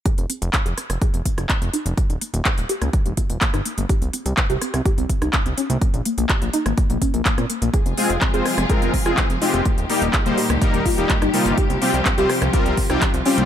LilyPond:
<<
  \new Staff \with { instrumentName = "Supersaw synth" } { \time 4/4 \key f \minor \tempo 4 = 125 r1 | r1 | r1 | r1 |
r8 <aes c' f' aes'>16 r8 <aes c' f' c''>16 r8 <aes c' f' bes'>8 r16 <aes c' f' aes'>16 r8 <aes c' f' g'>8 | r8 <g bes ees' g'>16 r8 <g bes ees' c''>16 r8 <g bes ees' bes'>8 r16 <g bes ees' g'>16 r8 <c g bes ees' f'>8 | r8 <c g c' f' g'>16 r8 <c g c' f' c''>16 r8 <c g c' f' bes'>8 r16 <c g c' f' g'>16 r8 <g c' f' g'>8 | }
  \new Staff \with { instrumentName = "Synth pluck" } { \time 4/4 \key f \minor aes'16 c'16 c'16 r16 c'16 aes'16 c'16 c'16 aes'16 c'16 c'16 f'16 c'16 c'16 ees'16 bes16 | bes16 r16 bes16 bes16 aes'16 bes16 g'16 bes16 bes16 bes16 f'16 bes16 bes16 ees'16 bes16 bes16 | g'16 c'16 c'16 r16 c'16 g'16 c'16 c'16 g'16 c'16 r16 ees'16 r16 c'16 des'16 bes16 | bes16 r16 bes16 bes16 g'16 bes16 ees'16 bes16 bes16 bes16 des'16 bes16 bes16 c'16 bes16 bes16 |
aes'16 c'16 c'16 r16 c'16 aes'16 c'16 c'16 aes'16 c'16 c'16 f'16 c'16 c'16 ees'16 bes16 | bes16 r16 bes16 bes16 aes'16 bes16 g'16 bes16 bes16 bes16 f'16 bes16 bes16 ees'16 bes16 bes16 | g'16 c'16 c'16 r16 c'16 g'16 c'16 c'16 g'16 c'16 c'16 ees'16 c'16 c'16 des'16 bes16 | }
  \new Staff \with { instrumentName = "String section" } { \clef bass \time 4/4 \key f \minor << { r1 | r1 | r1 | r1 |
<aes aes'>1 | <g g'>1~ | <g g'>1 | } \\ { r1 | r1 | r1 | r1 |
<c f f'>1 | <bes, ees ees'>1 | <c f f'>1 | } >> }
  \new Staff \with { instrumentName = "Analog synth bass" } { \clef bass \time 4/4 \key f \minor r16 f,,16 r16 f,,16 r16 f,,16 r16 f,,16 r16 f,,16 r16 f,,16 r16 f,,16 r16 f,,16 | r16 ees,,16 r16 ees,,16 r16 ees,,16 r16 des,16 r16 ees,,16 r16 ees,,16 r16 g,,16 r16 g,,16 | r16 c,16 r16 c,16 r16 c,16 r16 c,16 r16 c,16 r16 c,16 r16 c,16 r16 c,16 | r16 bes,,16 r16 bes,,16 r16 bes,,16 r16 aes,,16 r16 bes,,16 r16 bes,,16 r16 bes,16 r16 bes,,16 |
r16 f,,16 r16 f,,16 r16 f,,16 r16 f,,16 r16 f,,16 r16 f,,16 r16 f,,16 r16 f,,16 | r16 ees,,16 r16 ees,,16 r16 ees,,16 r16 des,16 r16 ees,,16 r16 ees,,16 r16 g,,16 r16 g,,16 | r16 c,16 r16 c,16 r16 c,16 r16 c,16 r16 c,16 r16 c,16 r16 c,16 r16 c,16 | }
  \new DrumStaff \with { instrumentName = "Drums" } \drummode { \time 4/4 <hh bd>16 hh16 hh16 hh16 <hc hh bd>16 hh16 <hh ss>16 <hh ss>16 <hh bd>16 hh16 <hh bd>16 <hh ss>16 <hc hh bd>16 hh16 hh16 hh16 | <hh bd>16 hh16 hh16 hh16 <hc hh bd>16 hh16 hh16 <hh ss>16 <hh bd>16 hh16 <hh bd>16 hh16 <hc hh bd>16 <hh ss>16 hh16 hh16 | <hh bd>16 hh16 hh16 hh16 <hc hh bd>16 hh16 <hh ss>16 <hh ss>16 <hh bd>16 hh16 <hh bd>16 <hh ss>16 <hc hh bd>16 hh16 hh16 hh16 | <hh bd>16 hh16 hh16 hh16 <hc hh bd>16 hh16 hh16 <hh ss>16 <hh bd>16 hh16 <hh bd>16 hh16 <hc hh bd>16 <hh ss>16 hh16 hh16 |
<hh bd>16 hh16 hho16 hh16 <hc hh bd>16 hh16 <hho ss>16 <hh ss>16 <hh bd>16 hh16 <hho bd>16 <hh ss>16 <hc hh bd>16 hh16 hho16 hh16 | <hh bd>16 hh16 hho16 hh16 <hc hh bd>16 hh16 hho16 <hh ss>16 <hh bd>16 hh16 <hho bd>16 hh16 <hc hh bd>16 <hh ss>16 hho16 hh16 | <hh bd>16 hh16 hho16 hh16 <hc hh bd>16 hh16 <hho ss>16 <hh ss>16 <hh bd>16 hh16 <hho bd>16 <hh ss>16 <hc hh bd>16 hh16 hho16 hh16 | }
>>